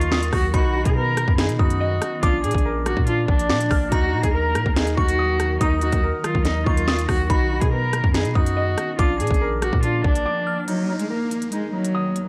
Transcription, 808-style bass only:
Already playing: D#2
0.33 D#2
0.54 B1
0.86 B2
1.28 F#2
1.49 B2
1.59 F#2
2.23 A#1
2.44 A#2
2.55 A#1
2.97 A#2
3.28 A#1
3.50 A#2
3.71 A#1
3.92 D#2
4.13 A#2
4.24 D#2
4.55 A#2
4.66 D#2
4.97 D#2
5.61 D#2
5.93 D#2
6.35 D#2
6.66 D#2
7.09 D#2
7.30 B1
7.62 B2
8.04 F#2
8.25 B2
8.35 F#2
8.99 A#1
9.20 A#2
9.31 A#1
9.73 A#2
10.04 A#1

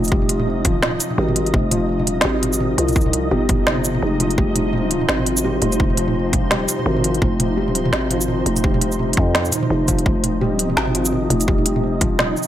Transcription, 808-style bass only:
Already playing: F1
1.18 G#1
1.54 F1
2.03 E1
2.25 G#1
2.78 C2
3.31 G1
4.03 F1
4.38 F1
5.09 G#1
5.62 F1
6.36 E1
6.86 G#1
7.22 F1
7.93 G#1
8.46 F1
9.17 F2
9.70 F1
10.06 F1
10.77 G#1
11.30 F1
12.04 E1

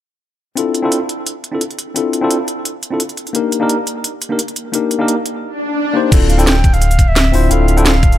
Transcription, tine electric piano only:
0.56 C4 D4 E4 F4 A4
0.82 C4 D4 E4 F4 A4
1.52 C4 D4 E4 F4 A4
1.94 C4 D4 E4 F4 A4
2.21 C4 D4 E4 F4 A4
2.91 C4 D4 E4 F4 A4
3.33 A#3 D4 D#4 G4 A#4
3.60 A#3 D4 D#4 G4 A#4
4.29 A#3 D4 D#4 G4 A#4
4.72 A#3 D4 D#4 G4 A#4
4.99 A#3 D4 D#4 G4 A#4
5.93 A#3 D4 D#4 G4 C5
6.11 C4 D4 E4 F4 A4
6.38 C4 D4 E4 F4 A4
7.32 C4 D4 E4 F4 C5
7.50 C4 D4 E4 F4 A4
7.76 C4 D4 E4 F4 A4

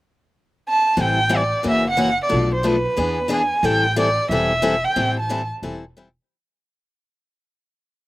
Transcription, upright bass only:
0.97 A1
1.65 F#1
2.32 B1
2.98 E2
3.63 A1
4.29 E1
4.96 A1
5.62 E1

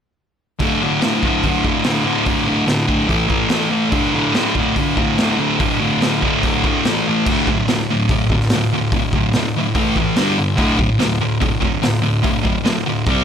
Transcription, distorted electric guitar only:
0.59 D2 A2 D3
0.82 D2 A2 D3
1.02 D2 A2 D3
1.25 D2 A2 D3
1.45 D2 A2 D3
1.65 D2 A2 D3
1.85 D2 A2 D3
2.05 D2 A2 D3
2.25 D2 A2 D3
2.46 D2 A2 D3
2.66 D2 A2 D3
2.87 D2 A2 D3
3.08 A2 E3 A3
3.28 A2 E3 A3
3.49 A2 E3 A3
3.71 A2 E3 A3
3.90 D2 A2 D3
4.13 D2 A2 D3
4.34 D2 A2 D3
4.56 D2 A2 D3
4.77 D2 A2 D3
4.97 D2 A2 D3
5.18 D2 A2 D3
5.39 D2 A2 D3
5.60 D2 A2 D3
5.80 D2 A2 D3
6.01 D2 A2 D3
6.23 D2 A2 D3
6.45 D2 A2 D3
6.65 D2 A2 D3
6.87 A2 E3 A3
7.07 A2 E3 A3
7.28 D2 A2 D3
7.50 D2 A2
7.68 D2 A2
7.91 D2 A2
8.11 D2 A2
8.32 D2 A2
8.53 D2 A2
8.74 D2 A2
8.94 D2 A2
9.14 D2 A2
9.36 D2 A2
9.57 D2 A2
9.75 A2 E3 A3
9.97 A2 E3
10.16 G2 D3 G3
10.38 G2 D3
10.57 D2 A2 D3
10.78 D2 A2
10.99 D2 A2
11.21 D2 A2
11.41 D2 A2
11.60 D2 A2
11.82 D2 A2
12.02 D2 A2
12.23 D2 A2
12.43 D2 A2
12.65 D2 A2
12.86 D2 A2
13.07 C3 G3 C4

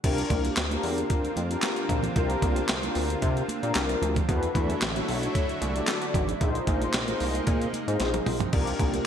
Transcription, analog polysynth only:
0.03 D4 F4 G4 A#4
0.70 D4 F4 G4 A#4
1.50 D4 F4 G4 A#4
2.16 D4 F4 G4 A#4
2.83 D4 F4 G4 A#4
3.63 D4 F4 G4 A#4
4.28 D4 F#4 A4 B4
4.95 D4 F#4 A4 C#5
5.75 D4 F#4 A4 D5
6.41 D#4 F4 G#4 C5
7.07 D#4 F4 G#4 C5
7.87 D#4 F4 G#4 C5
8.52 D4 F4 G4 A#4

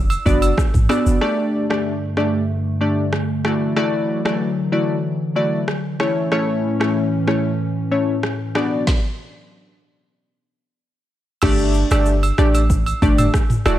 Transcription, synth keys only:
0.25 B3 D4 F#4 D5
0.89 B3 D4 F#4 D5
1.21 A3 D4 G4 D5
1.70 A3 D4 G4 D5
2.17 A3 D4 G4 D5
2.81 A3 D4 G4 D5
3.44 A3 E4 F#4 D5
3.76 A3 E4 F#4 D5
4.25 A3 E4 F#4 D5
4.72 A3 E4 F#4 D5
5.36 A3 E4 F#4 D5
6.00 A3 C#4 E4 C#5
6.32 A3 C#4 E4 C#5
6.80 A3 C#4 E4 C#5
7.27 A3 C#4 E4 C#5
7.91 A3 C#4 E4 C#5
8.55 B3 D4 F#4 D5
11.43 A3 D4 G4 D5
11.91 A3 D4 G4 D5
12.38 A3 D4 G4 D5
13.02 A3 D4 G4 D5
13.66 A3 E4 F#4 D5

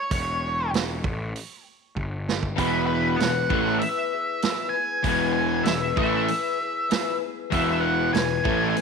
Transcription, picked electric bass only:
0.11 E1
0.72 E1
1.03 A1
1.96 G1
2.58 E1
3.19 E1
3.50 A1
5.04 E1
5.65 E1
5.97 A1
7.52 E1
8.14 E1
8.46 A1

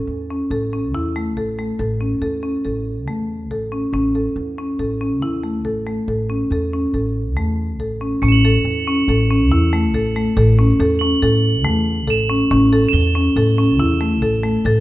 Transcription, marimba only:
Already playing: A4
0.30 C#4
0.51 A4
0.73 C#4
0.95 E4
1.16 A3
1.37 A4
1.59 A3
1.79 A4
2.01 C#4
2.22 A4
2.43 C#4
2.65 A4
3.08 A3
3.51 A4
3.72 C#4
3.94 C#4
4.15 A4
4.58 C#4
4.79 A4
5.01 C#4
5.22 E4
5.44 A3
5.65 A4
5.87 A3
6.08 A4
6.30 C#4
6.52 A4
6.73 C#4
6.94 A4
7.37 A3
7.80 A4
8.01 C#4
8.23 C#4
8.45 A4
8.87 C#4
9.09 A4
9.30 C#4
9.52 E4
9.73 A3
9.94 A4
10.16 A3
10.37 A4
10.59 C#4
10.80 A4
11.01 C#4
11.22 A4
11.65 A3
12.07 A4
12.30 C#4
12.51 C#4
12.73 A4
13.15 C#4
13.37 A4
13.58 C#4
13.80 E4
14.01 A3
14.22 A4
14.43 A3
14.66 A4

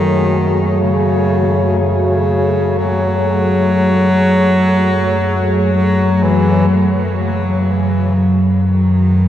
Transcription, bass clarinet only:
Already playing: D#3
0.81 C#3
1.80 C#3
2.78 F#3
5.74 F#3
6.23 E3
6.71 D#3
7.21 C#3
8.67 D#3

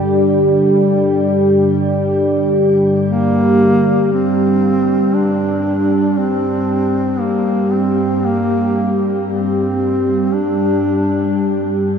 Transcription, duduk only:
3.09 A#3
4.13 C4
5.14 D4
6.17 C4
7.21 A#3
7.73 C4
8.25 A#3
9.28 C4
10.33 D4

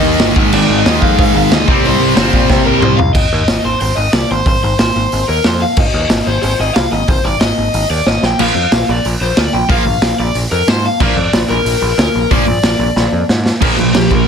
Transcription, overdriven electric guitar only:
Already playing: D#5
0.54 D5
0.79 D#5
1.02 F5
1.19 F5
1.37 F5
1.54 D#5
1.71 D5
1.86 C5
2.65 A#4
2.81 C5
2.97 F5
3.14 D#5
3.65 C5
3.81 C5
3.97 D#5
4.13 D5
4.31 C5
4.47 C5
4.63 C5
4.79 C5
5.28 A#4
5.47 C5
5.62 F5
5.79 D#5
6.27 C5
6.43 C5
6.61 D#5
6.75 F5
6.92 D#5
7.09 C5
7.24 D5
7.40 D#5
7.90 D5
8.07 D#5
8.26 G5
8.40 F5
8.90 D5
9.22 C5
9.38 D5
9.53 G5
9.71 F5
10.19 D5
10.51 A#4
10.68 C5
10.86 F5
11.02 D5
11.49 A#4
11.98 A#4
12.31 D5
13.96 G4
14.14 A#4

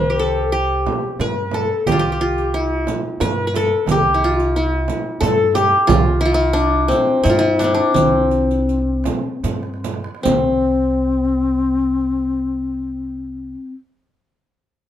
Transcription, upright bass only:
Already playing: C2
1.19 G2
1.86 C2
3.21 G2
3.88 C2
5.22 G2
5.89 C2
7.25 G2
7.95 C2
9.44 G2
10.26 C2

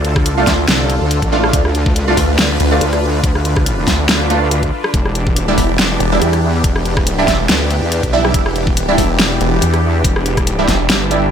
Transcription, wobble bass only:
Already playing: D2
0.27 C#2
0.68 C2
1.01 D2
1.22 A1
1.53 D2
1.97 C#2
2.39 D2
2.81 D2
3.24 D2
4.09 D2
4.94 E1
5.38 D#1
5.79 E1
6.22 E2
6.64 E1
7.49 D2
7.82 E2
8.03 B1
8.34 E1
9.19 E1
9.62 E2
10.04 E1
10.90 G1

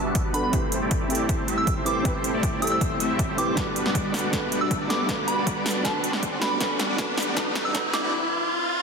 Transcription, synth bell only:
0.34 B5
0.44 B5
1.58 E6
1.86 D6
2.62 E6
2.72 E6
3.38 D6
3.47 D6
4.61 E6
4.90 D6
5.28 B5
5.85 A5
6.42 B5
6.51 B5
7.65 E6
7.94 D6

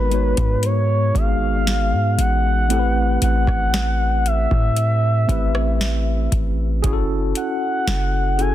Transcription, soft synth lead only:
Already playing: B4
0.65 C#5
1.17 F5
2.20 F#5
3.24 F#5
4.27 E5
7.37 F#5
8.40 G#5

